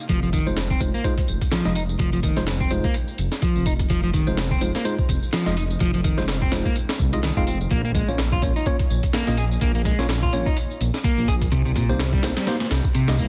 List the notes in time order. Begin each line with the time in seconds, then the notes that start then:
0.09 F1 F3, kick, closed hi-hat, tambourine
0.23 F3, tambourine
0.33 D#3, kick, closed hi-hat, tambourine
0.47 F1 G#3 D#4 F4 C5, tambourine
0.57 snare, closed hi-hat, tambourine
0.70 C4, kick, tambourine
0.80 F1 G#3 D#4 F4 C5, kick, closed hi-hat, tambourine
0.94 A#3, tambourine
1.04 G#3 D#4 F4 C5, kick, closed hi-hat, tambourine
1.18 kick, closed hi-hat, tambourine
1.28 F1, tambourine
1.41 kick, closed hi-hat, tambourine
1.52 F3, snare, closed hi-hat, tambourine
1.65 F1 G#3 D#4 F4 D#5, snare, tambourine
1.75 D#4, closed hi-hat, tambourine
1.89 tambourine
1.99 F1 F3, kick, closed hi-hat, tambourine
2.13 F3, closed hi-hat, tambourine
2.23 D#3, kick, closed hi-hat, tambourine
2.36 F1 G#3 D#4 F4 C5, snare, tambourine
2.47 snare, open hi-hat, tambourine
2.60 C4, kick, tambourine
2.70 F1 G#3 D#4 F4 C5, closed hi-hat, tambourine
2.84 A#3, kick, tambourine
2.94 closed hi-hat, tambourine
3.08 tambourine
3.18 F1, closed hi-hat, tambourine
3.32 snare, tambourine
3.42 F3, kick, closed hi-hat, tambourine
3.56 F1, tambourine
3.66 D#4, kick, closed hi-hat, tambourine
3.79 kick, closed hi-hat, tambourine
3.90 F1 F3, kick, closed hi-hat, tambourine
4.03 F3, tambourine
4.13 D#3, kick, closed hi-hat, tambourine
4.27 F1 G#3 D#4 F4 C5, tambourine
4.37 snare, closed hi-hat, tambourine
4.51 C4, kick, tambourine
4.61 F1 G#3 D#4 F4 C5, closed hi-hat, tambourine
4.75 A#3, snare, tambourine
4.85 G#3 D#4 F4 C5, closed hi-hat, tambourine
4.99 kick, tambourine
5.09 F1, kick, closed hi-hat, tambourine
5.23 tambourine
5.33 F3, snare, closed hi-hat, tambourine
5.46 F1 G#3 D#4 F4 D#5, snare, tambourine
5.57 D#4, closed hi-hat, tambourine
5.70 tambourine
5.80 F1 F3, kick, closed hi-hat, tambourine
5.94 F3, closed hi-hat, tambourine
6.04 D#3, kick, closed hi-hat, tambourine
6.18 F1 G#3 D#4 F4 C5, snare, tambourine
6.28 snare, open hi-hat, tambourine
6.42 C4, kick, tambourine
6.52 F1 G#3 D#4 F4 C5, snare, open hi-hat, tambourine
6.65 A#3, kick, tambourine
6.76 closed hi-hat, tambourine
6.89 snare, open hi-hat, tambourine
6.99 C2, kick, tambourine
7.13 G#3 D#4 F4 D#5, closed hi-hat, tambourine
7.23 D#3, snare, open hi-hat, tambourine
7.37 F1 G#3 C4 D#4 F4 F5, kick, tambourine
7.47 C4, closed hi-hat, tambourine
7.61 tambourine
7.71 A#1 A#3, kick, closed hi-hat, tambourine
7.85 A#3, tambourine
7.95 G#3, kick, closed hi-hat, tambourine
8.08 A#1 A#3 C#4 F4 C#5, tambourine
8.18 snare, closed hi-hat, tambourine
8.32 F4, kick, tambourine
8.42 A#1 A#3 C#4 F4 C#5, kick, closed hi-hat, tambourine
8.56 D#4, tambourine
8.66 A#3 C#4 F4 C#5, kick, closed hi-hat, tambourine
8.79 kick, closed hi-hat, tambourine
8.90 A#1, tambourine
9.03 kick, closed hi-hat, tambourine
9.13 A#3, snare, closed hi-hat, tambourine
9.27 A#1 A#3 C#4 F4 D#5, snare, tambourine
9.37 G#4, closed hi-hat, tambourine
9.51 tambourine
9.61 A#1 A#3, kick, closed hi-hat, tambourine
9.75 A#3, closed hi-hat, tambourine
9.85 G#3, kick, closed hi-hat, tambourine
9.99 A#1 A#3 C#4 F4 C#5, snare, tambourine
10.09 snare, open hi-hat, tambourine
10.23 F4, kick, tambourine
10.33 A#1 A#3 C#4 F4 C#5, closed hi-hat, tambourine
10.46 D#4, kick, tambourine
10.57 closed hi-hat, tambourine
10.71 tambourine
10.80 A#1, closed hi-hat, tambourine
10.94 snare, tambourine
11.04 A#3, kick, closed hi-hat, tambourine
11.17 A#1, tambourine
11.28 G#4, kick, closed hi-hat, tambourine
11.41 kick, closed hi-hat, tambourine
11.52 C2 C3, kick, closed hi-hat, tambourine
11.65 C3, tambourine
11.76 A#2, kick, closed hi-hat, tambourine
11.89 C2 A#3 D#4 G4 C5, tambourine
11.99 snare, closed hi-hat, tambourine
12.13 G3, kick, tambourine
12.23 C2 A#3 D#4 G4 C5, snare, closed hi-hat, tambourine
12.37 G3, snare, closed hi-hat, tambourine
12.47 A#3 D#4 G4 C5, snare, closed hi-hat, tambourine
12.60 snare, closed hi-hat, tambourine
12.71 C2, snare, closed hi-hat, tambourine
12.84 kick, tambourine
12.95 C3, closed hi-hat, tambourine
13.08 C2 A#3 D#4 G4 D#5, snare, closed hi-hat, tambourine
13.18 A#3, kick, tambourine